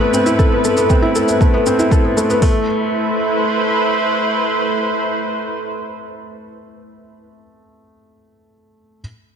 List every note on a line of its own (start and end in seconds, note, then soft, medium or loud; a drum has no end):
0.00 0.65 A3 medium
0.00 2.41 A3 medium
0.00 0.52 B3 medium
0.00 0.14 C4 medium
0.00 0.26 E4 medium
0.00 2.43 E4 medium
0.00 0.39 A4 medium
0.00 2.43 B4 medium
0.14 0.26 C4 medium
0.14 shaker medium
0.26 0.38 E4 medium
0.26 shaker soft
0.39 0.46 A4 medium
0.39 kick medium
0.39 shaker soft
0.52 0.64 B3 medium
0.64 0.77 A3 medium
0.64 shaker medium
0.77 0.89 B3 medium
0.77 shaker soft
0.90 1.02 C4 medium
0.90 kick medium
0.90 shaker soft
1.02 1.15 E4 medium
1.15 1.23 A4 medium
1.15 shaker medium
1.28 1.40 B3 medium
1.28 shaker soft
1.41 1.53 A3 medium
1.41 kick medium
1.41 shaker soft
1.54 1.66 B3 medium
1.66 1.78 C4 medium
1.66 shaker medium
1.79 1.91 E4 medium
1.79 shaker soft
1.91 1.99 A4 medium
1.91 kick medium
1.91 shaker soft
2.04 2.16 B3 medium
2.17 2.29 A3 medium
2.17 shaker medium
2.30 2.42 B3 medium
2.30 shaker soft
2.42 2.66 A3 medium
2.42 7.11 A3 medium
2.42 kick medium
2.42 open hi-hat medium
2.51 7.20 E4 medium
2.58 7.25 B4 medium
2.65 7.25 C5 medium